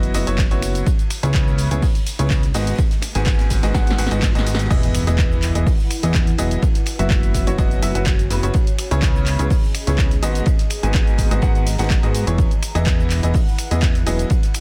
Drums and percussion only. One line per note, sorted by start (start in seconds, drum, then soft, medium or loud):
0.03 closed hi-hat soft
0.03 tambourine soft
0.03 shaker soft
0.14 open hi-hat medium
0.14 ride medium
0.14 tambourine medium
0.14 shaker medium
0.27 closed hi-hat medium
0.27 tambourine soft
0.27 shaker soft
0.38 kick loud
0.38 snare loud
0.38 clap loud
0.38 ride medium
0.38 tambourine soft
0.38 shaker soft
0.50 closed hi-hat medium
0.50 tambourine soft
0.50 shaker soft
0.62 finger snap medium
0.62 open hi-hat loud
0.62 ride medium
0.62 tambourine medium
0.62 shaker medium
0.75 closed hi-hat medium
0.75 tambourine soft
0.75 shaker soft
0.86 kick loud
0.86 ride medium
0.86 tambourine soft
0.86 shaker soft
0.99 closed hi-hat soft
0.99 tambourine soft
0.99 shaker soft
1.10 finger snap medium
1.10 open hi-hat loud
1.10 ride medium
1.10 tambourine medium
1.10 shaker medium
1.23 closed hi-hat medium
1.23 shaker soft
1.34 kick loud
1.34 snare loud
1.34 clap loud
1.34 ride medium
1.34 tambourine medium
1.34 shaker soft
1.47 tambourine soft
1.47 shaker soft
1.58 open hi-hat medium
1.58 ride medium
1.58 tambourine medium
1.58 shaker medium
1.71 closed hi-hat medium
1.71 tambourine soft
1.71 shaker soft
1.82 kick loud
1.82 open hi-hat medium
1.82 tambourine soft
1.82 shaker soft
1.95 closed hi-hat medium
1.95 tambourine soft
1.95 shaker soft
2.06 open hi-hat medium
2.06 ride medium
2.06 tambourine medium
2.06 shaker medium
2.19 closed hi-hat medium
2.19 shaker soft
2.30 kick loud
2.30 snare loud
2.30 clap loud
2.30 ride medium
2.30 tambourine medium
2.30 shaker soft
2.43 snare medium
2.43 closed hi-hat medium
2.43 tambourine soft
2.43 shaker soft
2.54 open hi-hat medium
2.54 open hi-hat loud
2.54 tambourine medium
2.54 shaker medium
2.67 closed hi-hat medium
2.67 tambourine soft
2.67 shaker soft
2.78 kick loud
2.78 ride medium
2.78 tambourine medium
2.78 shaker soft
2.90 snare medium
2.90 closed hi-hat soft
2.90 tambourine soft
2.90 shaker soft
3.02 finger snap medium
3.02 snare loud
3.02 open hi-hat loud
3.02 ride medium
3.02 tambourine medium
3.02 shaker medium
3.15 snare medium
3.15 closed hi-hat medium
3.15 ride medium
3.15 tambourine soft
3.15 shaker soft
3.25 kick loud
3.25 snare loud
3.25 clap loud
3.25 ride medium
3.25 tambourine soft
3.25 shaker soft
3.39 snare loud
3.39 closed hi-hat soft
3.39 ride medium
3.39 tambourine soft
3.39 shaker soft
3.50 kick medium
3.50 snare loud
3.50 open hi-hat loud
3.50 ride medium
3.50 tambourine medium
3.50 shaker medium
3.63 snare loud
3.63 closed hi-hat medium
3.63 ride medium
3.63 tambourine soft
3.63 shaker soft
3.74 kick loud
3.74 snare medium
3.74 ride medium
3.74 tambourine soft
3.74 shaker soft
3.87 snare medium
3.87 closed hi-hat medium
3.87 tambourine soft
3.87 shaker soft
3.98 open hi-hat loud
3.98 ride medium
3.98 tambourine medium
3.98 shaker medium
4.06 snare medium
4.11 closed hi-hat medium
4.11 tambourine soft
4.11 shaker soft
4.22 kick loud
4.22 snare loud
4.22 snare medium
4.22 clap loud
4.22 ride medium
4.22 tambourine medium
4.22 shaker soft
4.35 snare medium
4.35 closed hi-hat medium
4.35 tambourine soft
4.35 shaker soft
4.46 open hi-hat loud
4.46 ride medium
4.46 tambourine medium
4.46 shaker medium
4.55 snare loud
4.59 closed hi-hat medium
4.59 tambourine soft
4.59 shaker soft
4.71 kick loud
4.71 crash loud
4.71 ride loud
4.71 shaker soft
4.83 closed hi-hat medium
4.83 shaker soft
4.94 finger snap medium
4.94 open hi-hat loud
4.94 ride medium
4.94 shaker medium
5.07 closed hi-hat medium
5.07 shaker soft
5.18 kick loud
5.18 snare loud
5.18 clap loud
5.18 ride loud
5.18 shaker soft
5.32 shaker soft
5.42 clap medium
5.42 open hi-hat loud
5.42 ride medium
5.42 shaker medium
5.55 closed hi-hat medium
5.55 shaker soft
5.67 kick loud
5.67 open hi-hat medium
5.67 shaker soft
5.80 shaker soft
5.91 finger snap medium
5.91 open hi-hat loud
5.91 ride medium
5.91 shaker medium
6.03 closed hi-hat medium
6.03 shaker soft
6.14 kick loud
6.14 snare loud
6.14 clap loud
6.14 ride medium
6.14 shaker soft
6.27 snare medium
6.27 closed hi-hat medium
6.27 shaker soft
6.38 open hi-hat loud
6.38 ride medium
6.38 shaker medium
6.51 closed hi-hat medium
6.51 shaker soft
6.62 kick loud
6.62 ride medium
6.62 shaker soft
6.74 snare medium
6.74 closed hi-hat medium
6.74 shaker soft
6.86 finger snap medium
6.86 open hi-hat loud
6.86 ride medium
6.86 shaker medium
6.99 closed hi-hat medium
6.99 shaker soft
7.10 kick loud
7.10 snare loud
7.10 clap loud
7.10 ride medium
7.10 shaker soft
7.23 closed hi-hat soft
7.23 shaker soft
7.34 kick medium
7.34 open hi-hat loud
7.34 ride medium
7.34 shaker medium
7.47 snare soft
7.47 closed hi-hat medium
7.47 shaker soft
7.58 kick loud
7.58 ride medium
7.58 shaker soft
7.71 closed hi-hat soft
7.71 shaker soft
7.82 open hi-hat loud
7.82 ride medium
7.82 shaker medium
7.95 closed hi-hat medium
7.95 shaker soft
8.06 kick loud
8.06 snare loud
8.06 clap loud
8.06 ride medium
8.06 shaker soft
8.19 closed hi-hat medium
8.19 shaker soft
8.30 open hi-hat loud
8.30 ride medium
8.30 shaker medium
8.43 closed hi-hat medium
8.43 shaker soft
8.54 kick loud
8.54 ride loud
8.54 shaker soft
8.67 closed hi-hat medium
8.67 shaker soft
8.79 finger snap medium
8.79 open hi-hat loud
8.79 ride medium
8.79 shaker medium
8.91 closed hi-hat medium
8.91 shaker soft
9.02 kick loud
9.02 snare loud
9.02 clap loud
9.02 ride medium
9.02 shaker soft
9.16 shaker soft
9.26 clap medium
9.26 open hi-hat loud
9.26 ride medium
9.26 shaker medium
9.39 closed hi-hat medium
9.39 shaker soft
9.50 kick loud
9.50 open hi-hat medium
9.50 shaker soft
9.64 shaker soft
9.75 finger snap medium
9.75 open hi-hat loud
9.75 ride medium
9.75 shaker medium
9.87 closed hi-hat medium
9.87 shaker soft
9.98 kick loud
9.98 snare loud
9.98 clap loud
9.98 ride medium
9.98 shaker soft
10.11 snare soft
10.11 closed hi-hat medium
10.11 shaker soft
10.22 open hi-hat loud
10.22 ride medium
10.22 shaker medium
10.35 closed hi-hat medium
10.35 shaker soft
10.46 kick loud
10.46 ride loud
10.46 shaker soft
10.59 snare medium
10.59 closed hi-hat soft
10.59 shaker soft
10.70 finger snap medium
10.70 open hi-hat loud
10.70 ride medium
10.70 shaker medium
10.83 closed hi-hat medium
10.83 shaker soft
10.94 kick loud
10.94 snare loud
10.94 clap loud
10.94 ride medium
10.94 shaker soft
11.07 closed hi-hat soft
11.07 shaker soft
11.18 kick medium
11.18 snare soft
11.18 open hi-hat loud
11.18 ride medium
11.18 shaker medium
11.31 snare soft
11.31 closed hi-hat medium
11.31 shaker soft
11.42 kick loud
11.42 ride medium
11.42 shaker soft
11.55 closed hi-hat soft
11.55 shaker soft
11.66 snare medium
11.66 open hi-hat loud
11.66 ride medium
11.66 shaker medium
11.73 snare medium
11.73 ride medium
11.78 snare loud
11.78 closed hi-hat medium
11.78 ride medium
11.78 shaker soft
11.84 snare medium
11.84 ride medium
11.90 kick loud
11.90 snare loud
11.90 clap loud
11.90 ride medium
11.90 shaker soft
12.03 closed hi-hat medium
12.03 shaker soft
12.15 open hi-hat loud
12.15 ride medium
12.15 shaker medium
12.27 closed hi-hat medium
12.27 shaker soft
12.38 kick loud
12.38 ride medium
12.38 shaker soft
12.51 closed hi-hat medium
12.51 shaker soft
12.62 finger snap medium
12.62 open hi-hat loud
12.62 ride medium
12.62 shaker medium
12.75 closed hi-hat medium
12.75 shaker soft
12.86 kick loud
12.86 snare loud
12.86 clap loud
12.86 ride medium
12.86 shaker soft
13.00 shaker soft
13.10 clap medium
13.10 open hi-hat loud
13.10 ride medium
13.10 shaker medium
13.23 closed hi-hat medium
13.23 shaker soft
13.34 kick loud
13.34 open hi-hat medium
13.34 shaker soft
13.48 shaker soft
13.58 finger snap medium
13.58 open hi-hat loud
13.58 ride medium
13.58 shaker medium
13.71 closed hi-hat medium
13.71 shaker soft
13.82 kick loud
13.82 snare loud
13.82 clap loud
13.82 ride medium
13.82 shaker soft
13.95 snare soft
13.95 closed hi-hat medium
13.95 shaker soft
14.06 open hi-hat loud
14.06 ride medium
14.06 shaker medium
14.19 closed hi-hat medium
14.19 shaker soft
14.30 kick loud
14.30 ride loud
14.30 shaker soft
14.43 snare medium
14.43 closed hi-hat medium
14.43 shaker soft
14.54 finger snap medium
14.54 open hi-hat loud
14.54 ride medium
14.54 shaker medium